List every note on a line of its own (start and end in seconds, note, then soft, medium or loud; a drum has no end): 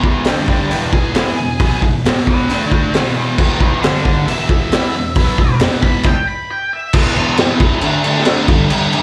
0.00 0.26 E2 loud
0.00 0.27 B2 loud
0.00 0.27 E3 loud
0.00 kick medium
0.05 0.26 B4 medium
0.05 0.27 D5 medium
0.24 0.71 G2 medium
0.24 0.48 D4 medium
0.24 0.48 B4 medium
0.24 snare loud
0.24 clap medium
0.24 open hi-hat medium
0.29 0.72 D3 medium
0.29 0.72 G3 medium
0.48 0.67 D4 medium
0.48 0.68 B4 medium
0.48 kick medium
0.69 1.16 E2 medium
0.69 0.91 D4 medium
0.69 0.92 B4 medium
0.69 clap medium
0.69 open hi-hat medium
0.73 1.15 B2 medium
0.73 1.14 E3 medium
0.92 1.79 G#4 medium
0.92 kick medium
1.15 1.37 E3 medium
1.15 1.38 B3 loud
1.15 1.38 E4 medium
1.15 snare loud
1.15 clap medium
1.15 open hi-hat medium
1.39 1.57 E2 medium
1.39 1.57 B2 medium
1.60 1.82 B2 loud
1.60 1.82 F#3 loud
1.60 1.83 B3 loud
1.60 kick loud
1.60 open hi-hat medium
1.82 2.01 E2 medium
1.82 2.02 B2 medium
1.82 kick medium
2.04 2.49 E2 medium
2.04 2.49 B2 loud
2.04 2.50 E3 loud
2.04 snare loud
2.04 clap loud
2.04 open hi-hat medium
2.18 snare soft
2.27 2.50 B4 medium
2.27 2.49 G5 medium
2.27 kick medium
2.49 2.94 D3 medium
2.49 2.95 A3 loud
2.49 2.95 D4 loud
2.49 2.70 B4 medium
2.49 2.72 G5 medium
2.49 clap medium
2.49 open hi-hat medium
2.71 2.92 B4 medium
2.71 2.94 G5 medium
2.71 kick medium
2.94 3.38 E2 medium
2.94 3.39 B2 loud
2.94 3.40 E3 loud
2.94 3.15 G#4 medium
2.94 3.16 E5 medium
2.94 snare loud
2.94 clap medium
2.94 open hi-hat medium
3.17 3.37 G#4 medium
3.17 3.39 E5 medium
3.38 3.83 E2 loud
3.38 3.84 B2 loud
3.38 3.84 E3 loud
3.38 3.61 G#4 medium
3.38 3.62 E5 medium
3.38 kick loud
3.38 crash loud
3.60 3.81 B4 medium
3.60 3.80 D5 medium
3.60 kick medium
3.81 4.27 G2 medium
3.81 4.27 D3 loud
3.81 4.03 A4 medium
3.81 4.03 D5 loud
3.81 snare loud
3.81 clap medium
3.81 open hi-hat medium
3.85 4.28 G3 loud
3.95 snare soft
4.04 4.25 A4 medium
4.04 4.27 D5 medium
4.04 kick medium
4.27 4.71 E2 medium
4.27 4.71 B2 medium
4.27 4.71 E3 loud
4.27 5.57 E5 medium
4.27 clap medium
4.27 open hi-hat medium
4.49 kick medium
4.72 4.94 E3 medium
4.72 4.95 B3 loud
4.72 4.95 E4 loud
4.72 snare loud
4.72 clap loud
4.72 open hi-hat medium
4.96 5.13 E2 medium
4.96 5.13 B2 medium
5.15 5.39 B2 medium
5.15 5.39 F#3 loud
5.15 kick loud
5.15 open hi-hat medium
5.20 5.40 B3 loud
5.38 5.58 E2 medium
5.38 5.58 B2 medium
5.38 kick medium
5.60 6.06 E2 loud
5.60 snare loud
5.60 clap loud
5.60 open hi-hat medium
5.64 6.06 B2 loud
5.64 6.07 E3 loud
5.73 snare soft
5.83 6.05 B5 medium
5.83 kick medium
6.03 6.28 G5 medium
6.03 kick loud
6.03 crash medium
6.27 6.49 B5 medium
6.51 6.72 G5 medium
6.73 6.94 E5 medium
6.93 7.15 E2 medium
6.93 7.15 B2 loud
6.93 7.17 E3 loud
6.93 kick loud
6.93 crash loud
6.93 crash medium
7.16 7.38 E2 medium
7.16 7.39 B2 medium
7.16 7.40 E3 medium
7.16 crash medium
7.37 7.61 E2 medium
7.37 7.62 B2 medium
7.37 7.62 E3 loud
7.37 snare loud
7.37 crash medium
7.60 7.82 E2 medium
7.60 7.82 B2 medium
7.60 7.83 E3 medium
7.60 kick medium
7.60 crash medium
7.81 8.04 D3 medium
7.81 8.06 A3 loud
7.81 crash medium
7.85 8.07 D4 loud
8.04 8.27 D3 medium
8.04 8.27 A3 medium
8.04 8.28 D4 loud
8.04 crash medium
8.17 snare soft
8.25 8.48 D3 medium
8.25 8.49 A3 medium
8.25 snare loud
8.25 crash loud
8.29 8.49 D4 medium
8.48 8.71 G2 medium
8.48 8.72 D3 loud
8.48 8.72 G3 loud
8.48 kick loud
8.48 crash medium
8.70 8.92 G2 loud
8.70 8.93 D3 loud
8.70 8.94 G3 loud
8.70 crash medium
8.93 9.03 G2 medium
8.93 9.03 D3 medium
8.93 9.03 G3 loud
8.93 crash medium